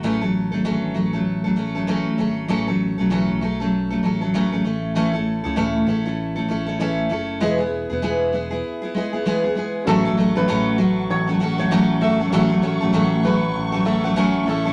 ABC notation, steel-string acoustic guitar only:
X:1
M:4/4
L:1/16
Q:"Swing 16ths" 1/4=98
K:A
V:1 name="Steel-string acoustic guitar"
[A,,E,F,A,CA] [F,A,CA]2 [F,A,CA] [E,F,A,CA]2 [F,A,CA] [F,A,CA]2 [F,A,CA] [F,A,CA] [F,A,CA] [A,,E,F,A,CA]2 [F,A,CA]2 | [A,,E,F,A,CA] [F,A,CA]2 [F,A,CA] [A,,E,F,A,CA]2 [F,A,CA] [F,A,CA]2 [F,A,CA] [F,A,CA] [F,A,CA] [A,,E,F,A,CA] [F,A,CA] [A,CEA]2 | [A,,E,A,CEA] [A,CEA]2 [A,CEA] [A,,E,A,CEA]2 [A,CEA] [A,CEA]2 [A,CEA] [A,CEA] [A,CEA] [A,,E,A,CEA]2 [A,CEA]2 | [E,G,B,EG] [B,EG]2 [B,EG] [E,G,B,EG]2 [G,B,EG] [B,EG]2 [B,EG] [G,B,EG] [B,EG] [E,G,B,EG] [B,EG] [G,B,EG]2 |
[A,,E,F,A,CA] [F,A,CA] [F,A,CA] [F,A,CA] [A,,E,F,A,CA]2 [F,A,CA]3 [F,A,CA] [F,A,CA] [F,A,CA] [A,,E,F,A,CA]2 [F,A,CA] [F,A,CA] | [A,,E,F,A,CA] [F,A,CA] [F,A,CA] [F,A,CA] [A,,E,F,A,CA]2 [F,A,CA]3 [F,A,CA] [F,A,CA] [F,A,CA] [A,,E,F,A,CA]2 [A,CEA] [A,CEA] |]